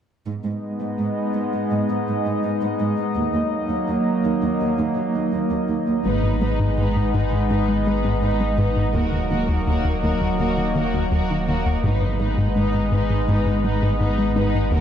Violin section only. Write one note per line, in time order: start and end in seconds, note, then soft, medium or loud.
6.05 6.41 D#4 soft
6.05 6.41 B4 soft
6.42 6.77 D#4 soft
6.42 6.77 B4 soft
6.78 7.12 D#4 soft
6.78 7.12 B4 soft
7.13 7.49 D#4 soft
7.13 7.49 B4 soft
7.50 7.84 D#4 soft
7.50 7.85 B4 soft
7.86 8.21 D#4 soft
7.86 8.21 B4 soft
8.22 8.58 D#4 soft
8.22 8.57 B4 soft
8.58 8.94 D#4 soft
8.58 8.94 B4 soft
8.94 9.29 F#4 soft
8.94 9.29 A#4 soft
9.30 9.66 F#4 soft
9.30 9.66 A#4 soft
9.67 10.02 F#4 soft
9.67 10.02 A#4 soft
10.03 10.38 F#4 soft
10.03 10.38 A#4 soft
10.39 10.75 F#4 soft
10.39 10.75 A#4 soft
10.76 11.11 F#4 soft
10.76 11.11 A#4 soft
11.12 11.47 F#4 soft
11.12 11.47 A#4 soft
11.48 11.83 F#4 soft
11.48 11.83 A#4 soft
11.84 12.19 D#4 soft
11.84 12.19 B4 soft
12.20 12.55 D#4 soft
12.20 12.55 B4 soft
12.56 12.92 D#4 soft
12.56 12.91 B4 soft
12.92 13.28 D#4 soft
12.92 13.28 B4 soft
13.30 13.64 D#4 soft
13.30 13.63 B4 soft
13.65 14.00 D#4 soft
13.65 14.00 B4 soft
14.01 14.35 D#4 soft
14.01 14.35 B4 soft
14.36 14.72 D#4 soft
14.36 14.72 B4 soft
14.73 14.81 F#4 soft
14.73 14.81 A#4 soft